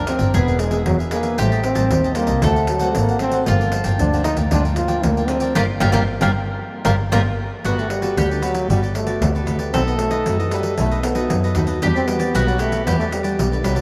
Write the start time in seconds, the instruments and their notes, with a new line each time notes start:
Already playing: double bass D2, nylon-string guitar D3, mandolin A#4
0.07 nylon-string guitar F3 A#3 D4, trombone C4, cavaquinho F4 A#4 D5 G5, pandeiro
0.19 double bass G1, cavaquinho A#4 D5 G5, pandeiro
0.34 double bass E1, nylon-string guitar E3 B3 D4 G#4, trombone B3, cavaquinho D4 G#4 B4 E5, mandolin G#4, pandeiro
0.47 cavaquinho G#4 B4 E5, pandeiro
0.59 trombone G#3, muted cavaquinho stroke, pandeiro
0.71 nylon-string guitar B3 D4 G#4, cavaquinho G#4 B4 E5, pandeiro
0.86 double bass E2, trombone F#3, pandeiro
0.99 cavaquinho G#4 B4 E5, pandeiro
1.11 trombone A#3, nylon-string guitar B3 D4 G#4, cavaquinho D4 G#4 B4 E5, pandeiro
1.23 cavaquinho G#4 B4 E5, pandeiro
1.38 double bass A1, nylon-string guitar A2 G3 C4 D#4, trombone A3, cavaquinho G4 C5 D#5 A5, mandolin G4, pandeiro
1.52 cavaquinho C5 D#5 A5, pandeiro
1.63 trombone C4, muted cavaquinho stroke, pandeiro
1.75 double bass A1, nylon-string guitar G3 C4 D#4, cavaquinho C5 D#5 A5, pandeiro
1.91 double bass D#2, nylon-string guitar A2, pandeiro
2.04 cavaquinho C5 D#5 A5, pandeiro
2.15 nylon-string guitar G3 C4 D#4, trombone A#3, cavaquinho G4 C5 D#5 A5, pandeiro
2.27 double bass C2, cavaquinho C5 D#5 A5, pandeiro
2.42 double bass D2, nylon-string guitar D3 A3 C4 F#4, trombone A3, cavaquinho D4 C5 D5 F#5, mandolin A4, pandeiro
2.56 cavaquinho C5 D5 F#5, pandeiro
2.67 trombone F#3, muted cavaquinho stroke, pandeiro
2.79 nylon-string guitar A3 C4 F#4, cavaquinho C5 D5 F#5, pandeiro
2.95 double bass G#1, trombone A#3, pandeiro
3.09 cavaquinho C5 D5 F#5, pandeiro
3.19 nylon-string guitar A3 C4 F#4, trombone C4, cavaquinho D4 C5 D5 F#5, pandeiro
3.31 cavaquinho C5 D5 F#5, pandeiro
3.46 double bass G1, nylon-string guitar G2 F3 A#3 D4, trombone A#3, cavaquinho F4 A#4 D5 G5, mandolin F4, pandeiro
3.61 cavaquinho A#4 D5 G5, pandeiro
3.72 nylon-string guitar F3 A#3 D4, muted cavaquinho stroke, pandeiro
3.84 double bass G1, cavaquinho A#4 D5 G5, pandeiro
3.99 double bass D2, nylon-string guitar D3 F3 A#3 D4, trombone D4, pandeiro
4.13 nylon-string guitar F3 A#3 D4, cavaquinho A#4 D5 G5, pandeiro
4.24 trombone D#4, cavaquinho F4 A#4 D5 G5, pandeiro
4.37 double bass D2, cavaquinho A#4 D5 G5, pandeiro
4.51 double bass D2, nylon-string guitar G2 F3 A#3 D4, trombone D4, cavaquinho F4 A#4 D5 G5, pandeiro
4.65 cavaquinho A#4 D5 G5, pandeiro
4.76 nylon-string guitar F3 A#3 D4, trombone F4, muted cavaquinho stroke, pandeiro
4.88 nylon-string guitar F3 A#3 D4, cavaquinho A#4 D5 G5, pandeiro
5.03 double bass D2, nylon-string guitar D3, trombone A#3, pandeiro
5.17 cavaquinho A#4 D5 G5, pandeiro
5.28 nylon-string guitar F3 A#3 D4, trombone C4, cavaquinho F4 A#4 D5 G5, pandeiro
5.40 cavaquinho A#4 D5 G5, pandeiro
5.55 double bass G1, nylon-string guitar G3 A#3 D4, trombone A#3, mandolin F4 G4 A#4, cavaquinho D5 F5 G5, pandeiro
5.80 double bass G1, nylon-string guitar G3 A#3 D4, trombone A#3, mandolin F4 G4 A#4, cavaquinho D5 F5 G5, pandeiro
5.92 double bass G1, nylon-string guitar G3 A#3 D4, trombone A#3, mandolin F4 G4 A#4, cavaquinho D5 F5 G5, pandeiro
6.21 double bass G1, nylon-string guitar G3 A#3 D4, trombone A#3, mandolin F4 G4 A#4, cavaquinho D5 F5 G5, pandeiro
6.84 double bass G1, nylon-string guitar G3 A#3 D4, trombone A#3, mandolin F4 G4 A#4, cavaquinho D5 F5 G5, pandeiro
7.12 double bass G1, nylon-string guitar G3 A#3 D4, trombone A#3, mandolin F4 G4 A#4, cavaquinho D5 F5 G5, pandeiro
7.64 double bass G1, nylon-string guitar G3 B3 F#4 A4, trombone B3, cavaquinho F#4 G4 B4 D5, mandolin F#4, pandeiro
7.78 trombone A3, cavaquinho G4 B4 D5, pandeiro
7.90 trombone G3, muted cavaquinho stroke, pandeiro
8.02 nylon-string guitar B3 F#4 A4, cavaquinho G4 B4 D5, pandeiro
8.17 double bass D2, nylon-string guitar D3, cavaquinho F#4 G4 B4 D5, mandolin G4, pandeiro
8.31 trombone D3, cavaquinho G4 B4 D5, pandeiro
8.42 trombone F#3, nylon-string guitar B3 F#4 A4, cavaquinho F#4 G4 B4 D5, pandeiro
8.54 pandeiro
8.69 double bass G1, nylon-string guitar G3 B3 F#4 A4, trombone G3, cavaquinho F#4 G4 B4 D5, pandeiro
8.83 cavaquinho G4 B4 D5, pandeiro
8.94 trombone A3, muted cavaquinho stroke, pandeiro
9.06 nylon-string guitar B3 F#4 A4, cavaquinho G4 B4 D5, pandeiro
9.21 double bass D2, nylon-string guitar D3, pandeiro
9.35 nylon-string guitar B3 A4, cavaquinho G4 B4 D5, pandeiro
9.46 double bass D2, cavaquinho F#4 G4 B4 D5, pandeiro
9.59 cavaquinho G4 B4 D5, pandeiro
9.73 double bass B1, nylon-string guitar B2 A3 D#4 F#4, trombone C4, cavaquinho D#4 A4 B4 D#5, mandolin A4, pandeiro
9.87 trombone B3, cavaquinho A4 B4 D#5, pandeiro
9.98 trombone A3, nylon-string guitar A3 D#4 F#4, muted cavaquinho stroke, pandeiro
10.11 cavaquinho A4 B4 D#5, pandeiro
10.26 double bass F#2, nylon-string guitar F#3 A3 D#4 F#4, cavaquinho D#4 A4 B4 D#5, pandeiro
10.39 trombone E3, cavaquinho A4 B4 D#5, pandeiro
10.51 trombone G3, cavaquinho D#4 A4 B4 D#5, pandeiro
10.63 pandeiro
10.78 double bass B1, nylon-string guitar B2 A3 D#4 F#4, trombone A3, cavaquinho D#4 A4 B4 D#5, pandeiro
10.91 cavaquinho A4 B4 D#5, pandeiro
11.03 trombone B3, muted cavaquinho stroke, pandeiro
11.15 nylon-string guitar A3 D#4 F#4, cavaquinho A4 B4 D#5, pandeiro
11.30 double bass F#2, nylon-string guitar F#3, pandeiro
11.44 cavaquinho A4 B4 D#5, pandeiro
11.55 double bass D#2, nylon-string guitar A3 D#4 F#4, cavaquinho D#4 A4 B4 D#5, pandeiro
11.67 cavaquinho A4 B4 D#5, pandeiro
11.82 double bass E2, nylon-string guitar E3 G3 D4 F#4, trombone D4, cavaquinho E4 G4 B4 D5, mandolin G4, pandeiro
11.95 trombone C4, cavaquinho G4 B4 D5, pandeiro
12.07 nylon-string guitar G3 D4 F#4, trombone B3, muted cavaquinho stroke, pandeiro
12.19 cavaquinho G4 B4 D5, pandeiro
12.34 double bass B1, nylon-string guitar B2 G3 D4 F#4, cavaquinho E4 G4 B4 D5, mandolin F#4, pandeiro
12.47 trombone F#3, cavaquinho G4 B4 D5, pandeiro
12.58 trombone A3, cavaquinho E4 G4 B4 D5, pandeiro
12.72 pandeiro
12.85 double bass E2, nylon-string guitar E3 G3 D4 F#4, trombone B3, cavaquinho E4 G4 B4 D5, mandolin G4, pandeiro
12.99 trombone A3, cavaquinho G4 B4 D5, pandeiro
13.11 trombone G3, muted cavaquinho stroke, pandeiro
13.23 nylon-string guitar G3 D4, cavaquinho G4 B4 D5, pandeiro
13.39 double bass B1, nylon-string guitar B2, pandeiro
13.52 trombone D3, cavaquinho G4 B4 D5, pandeiro
13.63 double bass C2, trombone F#3, nylon-string guitar G3 D4 F#4, cavaquinho E4 G4 B4 D5, pandeiro
13.75 cavaquinho G4 B4 D5, pandeiro